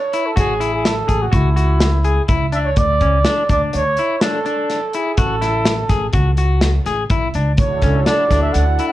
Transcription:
0.00 0.28 C#5 medium
0.13 0.30 E4 medium
0.13 closed hi-hat medium
0.26 0.38 A4 medium
0.36 1.01 A1 medium
0.36 0.53 F#4 medium
0.36 0.72 G#4 medium
0.36 kick medium
0.36 closed hi-hat medium
0.60 0.94 E4 medium
0.60 closed hi-hat medium
0.74 0.88 G#4 medium
0.85 1.23 A4 medium
0.85 snare medium
0.85 closed hi-hat medium
1.08 1.30 A1 medium
1.08 1.25 G#4 medium
1.08 kick medium
1.08 closed hi-hat medium
1.22 1.36 F#4 medium
1.32 2.18 C#2 medium
1.32 2.30 E4 medium
1.32 1.49 F#4 medium
1.32 kick medium
1.32 closed hi-hat medium
1.56 1.90 F#4 medium
1.56 closed hi-hat medium
1.81 snare loud
1.81 closed hi-hat medium
2.05 2.22 G#4 medium
2.05 closed hi-hat medium
2.29 2.72 C#2 medium
2.29 2.46 E4 medium
2.29 kick medium
2.29 closed hi-hat medium
2.53 2.70 D4 medium
2.53 2.59 E5 medium
2.53 closed hi-hat medium
2.65 2.79 C#5 medium
2.77 2.98 D2 medium
2.77 3.50 D5 loud
2.77 kick loud
2.77 closed hi-hat medium
3.01 3.23 C#2 medium
3.01 3.18 C#4 medium
3.01 kick medium
3.01 closed hi-hat soft
3.25 3.42 D4 medium
3.25 snare medium
3.25 closed hi-hat medium
3.49 3.71 D2 medium
3.49 3.83 D4 medium
3.49 3.62 D5 medium
3.49 kick medium
3.49 closed hi-hat medium
3.73 3.95 D2 medium
3.73 4.22 C#5 medium
3.73 closed hi-hat medium
3.97 4.15 E4 medium
3.97 closed hi-hat medium
4.21 4.39 D4 medium
4.21 4.97 A4 medium
4.21 snare loud
4.21 closed hi-hat medium
4.45 4.79 D4 medium
4.45 closed hi-hat soft
4.70 snare soft
4.70 closed hi-hat medium
4.93 5.11 E4 medium
4.93 5.21 G#4 medium
4.93 closed hi-hat medium
5.17 5.81 A1 medium
5.17 5.34 F#4 medium
5.17 6.15 A4 medium
5.17 kick loud
5.17 closed hi-hat medium
5.41 5.74 E4 medium
5.41 snare soft
5.41 closed hi-hat medium
5.65 snare loud
5.65 closed hi-hat medium
5.89 6.11 A1 medium
5.89 6.06 G#4 medium
5.89 kick medium
5.89 snare soft
5.89 closed hi-hat medium
6.13 6.77 C#2 medium
6.13 6.30 F#4 medium
6.13 kick medium
6.13 closed hi-hat medium
6.37 6.71 F#4 medium
6.37 closed hi-hat medium
6.61 snare medium
6.61 closed hi-hat medium
6.85 7.08 A1 medium
6.85 7.03 G#4 medium
6.85 snare soft
6.85 closed hi-hat soft
7.09 7.32 B1 medium
7.09 7.27 E4 medium
7.09 kick medium
7.09 closed hi-hat medium
7.34 7.56 C#2 medium
7.34 7.51 D4 medium
7.34 closed hi-hat soft
7.56 7.79 D2 medium
7.56 8.92 D4 medium
7.56 8.92 E4 medium
7.56 8.92 F#4 medium
7.56 8.92 A4 medium
7.56 8.08 C#5 medium
7.56 kick loud
7.56 closed hi-hat medium
7.82 8.03 C#2 medium
7.82 8.00 C#4 medium
7.82 kick medium
7.82 snare soft
7.82 closed hi-hat soft
8.06 8.23 D4 medium
8.06 8.43 D5 medium
8.06 snare medium
8.06 closed hi-hat medium
8.31 8.52 D2 medium
8.31 8.64 D4 medium
8.31 kick medium
8.31 snare soft
8.31 closed hi-hat medium
8.42 8.54 E5 medium
8.53 8.76 D2 medium
8.53 8.88 F#5 medium
8.53 closed hi-hat medium
8.79 8.92 E4 medium
8.79 closed hi-hat medium
8.88 8.92 F#5 medium

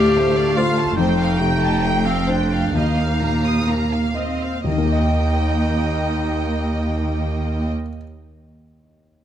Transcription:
0.00 0.93 D2 medium
0.00 0.93 D2 soft
0.00 0.93 D2 medium
0.00 1.00 A2 soft
0.00 0.17 A3 soft
0.00 2.73 A3 medium
0.00 0.58 G4 medium
0.00 0.57 C5 medium
0.00 0.16 D5 soft
0.00 0.98 F5 medium
0.16 0.81 A3 soft
0.16 0.36 C5 medium
0.35 0.56 D5 soft
0.55 0.95 F4 medium
0.55 0.97 C5 soft
0.55 0.76 F5 medium
0.77 0.97 A5 soft
0.96 2.70 F1 medium
0.96 2.70 F2 medium
0.96 2.07 D#4 medium
0.96 1.16 C5 medium
0.96 2.70 G5 medium
1.19 1.39 F5 soft
1.38 2.09 C3 soft
1.38 1.60 G5 soft
1.60 1.82 A5 soft
1.83 2.55 A3 soft
1.83 2.05 G5 soft
2.04 2.30 C4 medium
2.04 2.27 F5 soft
2.27 2.77 D4 medium
2.27 2.73 C5 soft
2.27 2.50 C5 soft
2.51 2.74 F5 soft
2.73 4.39 D#2 soft
2.73 4.62 D#2 soft
2.73 4.39 D#2 soft
2.73 3.58 A#3 soft
2.73 4.17 D#4 medium
2.73 2.95 D#5 soft
2.73 4.36 F5 soft
2.96 3.20 F5 soft
3.20 3.96 A#2 soft
3.20 3.43 A#5 soft
3.44 3.67 D#6 soft
3.67 4.46 A#3 soft
3.67 4.13 A#3 soft
3.67 3.91 A#5 soft
3.91 4.16 F5 soft
4.15 4.65 C4 soft
4.15 4.65 D#5 soft
4.15 4.41 D#5 soft
4.41 4.65 F5 soft
4.64 7.68 D#2 soft
4.64 7.69 D#2 soft
4.64 7.69 D#3 soft
4.64 7.69 A#3 soft
4.64 7.69 D#4 medium
4.64 7.69 D#5 soft
4.64 7.69 G5 soft
4.71 7.75 D#3 soft
4.78 7.82 A#3 soft
4.85 7.89 G4 soft
4.92 7.96 D#5 soft
4.99 8.03 G5 soft

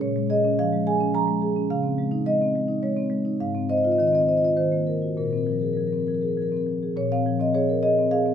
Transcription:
0.01 1.66 A#2 medium
0.01 0.29 C#5 medium
0.16 0.38 G#3 medium
0.30 0.52 G#4 medium
0.30 0.57 D#5 medium
0.44 0.67 C#4 medium
0.59 0.81 F3 medium
0.59 0.85 F5 medium
0.72 0.95 G#3 medium
0.87 1.09 G#4 medium
0.87 1.13 G#5 medium
1.00 1.22 C#4 medium
1.15 1.37 F3 medium
1.15 1.68 A#5 medium
1.27 1.50 G#3 medium
1.42 1.64 G#4 medium
1.56 1.70 C#4 soft
1.70 3.37 C#3 medium
1.70 2.25 F5 medium
1.83 2.06 C4 medium
1.98 2.21 G#3 medium
2.11 2.35 D#4 medium
2.26 2.50 G#3 soft
2.26 2.82 D#5 medium
2.42 2.65 C4 soft
2.55 2.79 G#3 soft
2.68 2.92 D#4 soft
2.83 3.06 G#3 medium
2.83 3.38 C#5 medium
2.97 3.20 C4 soft
3.10 3.34 G#3 medium
3.25 3.40 D#4 soft
3.40 4.53 G#2 medium
3.40 3.68 F5 medium
3.55 3.78 C4 medium
3.69 3.93 C5 medium
3.69 3.77 D#5 medium
3.77 3.84 D#5 medium
3.84 4.08 F4 soft
3.84 3.92 D#5 medium
3.92 4.00 D#5 medium
3.98 4.22 D#3 soft
3.98 4.07 D#5 medium
4.07 4.15 D#5 medium
4.12 4.36 C4 soft
4.12 4.22 D#5 medium
4.22 4.29 D#5 medium
4.27 4.51 C5 soft
4.27 4.37 D#5 medium
4.37 4.45 D#5 medium
4.41 4.56 F4 soft
4.41 4.53 D#5 medium
4.57 5.16 D#3 medium
4.57 5.15 C5 medium
4.72 4.96 A#3 soft
4.87 5.11 A#4 soft
5.02 5.18 F#4 soft
5.17 6.92 A#2 medium
5.17 5.24 A#4 medium
5.24 5.30 A#4 soft
5.30 5.57 C4 soft
5.30 5.38 A#4 soft
5.38 5.45 A#4 soft
5.45 5.71 F3 soft
5.45 5.52 A#4 soft
5.52 5.59 A#4 soft
5.59 5.86 G#4 soft
5.59 5.66 A#4 soft
5.66 5.73 A#4 soft
5.73 6.01 F3 soft
5.73 5.80 A#4 soft
5.80 5.87 A#4 soft
5.87 5.94 A#4 soft
5.93 6.16 C4 soft
5.93 6.00 A#4 soft
6.00 6.07 A#4 soft
6.07 6.31 F3 soft
6.07 6.14 A#4 soft
6.14 6.21 A#4 soft
6.21 6.46 G#4 soft
6.21 6.28 A#4 soft
6.28 6.35 A#4 soft
6.35 6.61 F3 soft
6.35 6.42 A#4 soft
6.42 6.50 A#4 soft
6.50 6.76 C4 soft
6.50 6.57 A#4 soft
6.57 6.63 A#4 soft
6.67 6.91 F3 soft
6.83 6.97 G#4 soft
6.96 8.34 A#2 medium
6.96 7.11 C#5 medium
7.12 7.35 C4 medium
7.12 7.39 F5 medium
7.26 7.49 F3 medium
7.40 7.63 C4 medium
7.40 7.55 D#5 medium
7.54 7.78 G#4 medium
7.54 7.82 C#5 medium
7.69 7.84 A#4 medium
7.83 8.06 G#4 medium
7.83 8.10 D#5 medium
7.99 8.21 C4 medium
8.11 8.34 G#4 medium
8.11 8.34 F5 medium
8.26 8.34 C4 medium

